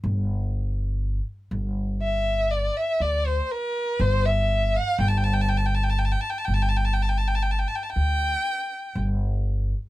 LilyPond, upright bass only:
\new Staff \with { instrumentName = "Upright bass" } { \clef bass \time 10/8 \tempo 4 = 61 g,,4. g,,4. d,8 r8 g,,4 | g,,4. g,,4. d,8 r8 g,,4 | }